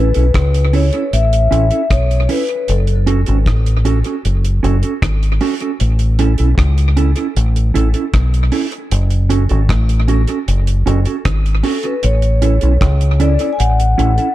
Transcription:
Already playing: A1 B4
0.14 B1 C#4 E4 A4, closed hi-hat
0.34 C#2, kick, cross-stick, closed hi-hat
0.54 closed hi-hat
0.73 C#4 E4 A4 C#5, open hi-hat
0.93 C#4 E4 A4, closed hi-hat
1.13 A1 E5, closed hi-hat
1.33 closed hi-hat
1.51 A1 C#4 E4 A4, closed hi-hat
1.71 C#4 E4 A4, closed hi-hat
1.91 B1 C#5, kick, cross-stick, closed hi-hat
2.11 closed hi-hat
2.29 C#4 E4 A4 B4, open hi-hat
2.48 closed hi-hat
2.68 F#1 A4, closed hi-hat
2.87 closed hi-hat
3.06 C#4 F#4 A4, closed hi-hat
3.26 G#1 C#4 F#4 A4, closed hi-hat
3.46 A1, kick, cross-stick, closed hi-hat
3.66 closed hi-hat
3.85 C#4 F#4 A4, closed hi-hat
4.04 C#4 F#4 A4, closed hi-hat
4.25 F#1, closed hi-hat
4.45 closed hi-hat
4.63 F#1 C#4 F#4 A4, closed hi-hat
4.83 C#4 F#4 A4, closed hi-hat
5.02 G#1, kick, cross-stick, closed hi-hat
5.23 closed hi-hat
5.41 C#4 F#4 A4, open hi-hat
5.60 C#4 F#4 A4, closed hi-hat
5.80 A1, closed hi-hat
5.99 closed hi-hat
6.19 C#4 E4 A4, closed hi-hat
6.38 B1 C#4 E4 A4, closed hi-hat
6.58 C#2, kick, cross-stick, closed hi-hat
6.78 closed hi-hat
6.97 C#4 E4 A4, closed hi-hat
7.16 C#4 E4 A4, closed hi-hat
7.36 A1, closed hi-hat
7.56 closed hi-hat
7.74 A1 C#4 E4 A4, closed hi-hat
7.94 C#4 E4 A4, closed hi-hat
8.14 B1, kick, cross-stick, closed hi-hat
8.34 closed hi-hat
8.52 C#4 E4 A4, open hi-hat
8.72 closed hi-hat
8.91 F#1, closed hi-hat
9.10 closed hi-hat
9.30 C#4 F#4 A4, closed hi-hat
9.49 G#1 C#4 F#4 A4, closed hi-hat
9.69 A1, kick, cross-stick, closed hi-hat
9.89 closed hi-hat
10.08 C#4 F#4 A4, closed hi-hat
10.27 C#4 F#4 A4, closed hi-hat
10.48 F#1, closed hi-hat
10.67 closed hi-hat
10.86 F#1 C#4 F#4 A4, closed hi-hat
11.05 C#4 F#4 A4, closed hi-hat
11.25 G#1, kick, cross-stick, closed hi-hat
11.46 closed hi-hat
11.63 C#4 F#4 A4, open hi-hat
11.83 C#4 F#4 A4 B4, closed hi-hat
12.03 A1 C#5, closed hi-hat
12.22 closed hi-hat
12.42 C#4 E4 A4, closed hi-hat
12.61 B1 C#4 E4 A4, closed hi-hat
12.81 C#2, kick, cross-stick, closed hi-hat
13.01 closed hi-hat
13.20 C#4 E4 A4 D5, closed hi-hat
13.39 C#4 E4 A4, closed hi-hat
13.53 G#5
13.59 A1 F#5, closed hi-hat
13.80 closed hi-hat
13.98 A1 C#4 E4 A4, closed hi-hat
14.18 C#4 E4 A4, closed hi-hat

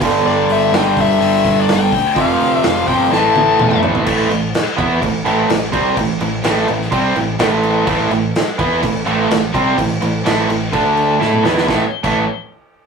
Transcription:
0.00 G1 G2 D3 G3, kick, crash
0.25 G1 G2 D3 G3 D5
0.48 G1 G2 D3 G3 E5, open hi-hat
0.72 G1 G2 D3 G3 G5, snare, open hi-hat
0.96 G1 G2 D3 G3, kick, open hi-hat
1.01 E5
1.20 G1 G2 D3 G3, open hi-hat
1.43 G1 G2 D3 G3, kick, snare, open hi-hat
1.60 D5
1.68 G1 G2 D3 G3, snare, open hi-hat
1.73 G5
1.91 D2 G2 D3 G3, kick, open hi-hat
2.15 F1 F2 C3 F3, kick, open hi-hat
2.21 F5
2.39 D2 F2 C3 F3, open hi-hat
2.63 F1 F2 C3 F3 F5, snare, open hi-hat
2.87 G1 F2 C3 F3 G5, kick, open hi-hat
3.11 A1 A2 E3 A3 A5, snare
3.35 A1 A2 E3 A3, high tom
3.59 E2 A2 E3 A3, mid tom
3.71 mid tom
3.83 A1 A2 E3 A3, floor tom
3.95 floor tom
4.06 A1 A2 E3 A3, kick, crash
4.30 A1 A2 E3, crash
4.54 snare, crash
4.78 E2 E3 B3 E4, kick, crash
5.01 A1 A2 E3, kick, crash
5.25 A1 A2 E3 A3, crash
5.49 A1 A2 E3, snare, crash
5.72 C2 C3 G3 C4, kick, crash
5.96 A1 A2 E3, kick, crash
6.19 A1 A2 E3, crash
6.43 A1 A2 E3 A3, snare, crash
6.57 snare
6.68 A1 A2 E3, crash
6.81 snare
6.91 C2 C3 G3 C4, kick, crash
7.15 A1 A2 E3, crash
7.39 A1 A2 E3 A3, snare, crash
7.63 crash
7.86 A1 A2 E3 A3, kick, crash
8.11 A1 A2 E3, crash
8.35 snare, crash
8.58 E2 E3 B3 E4, kick, crash
8.82 A1 A2 E3, kick, crash
9.05 A1 A2 E3 A3, crash
9.29 A1 A2 E3, snare, crash
9.53 C2 C3 G3 C4, kick, crash
9.77 A1 A2 E3, kick, crash
10.01 A1 A2 E3, crash
10.24 A1 A2 E3 A3, snare, crash
10.48 A1 A2 E3, crash
10.73 D2 D3 A3 D4, kick, crash
10.97 crash
11.21 A2 A3 E4 A4, snare
11.33 mid tom
11.44 E2 E3 B3 E4, snare
11.57 snare
11.68 A1 A2 E3 A3, kick, snare
12.04 A1 A2 E3 A3, kick, crash

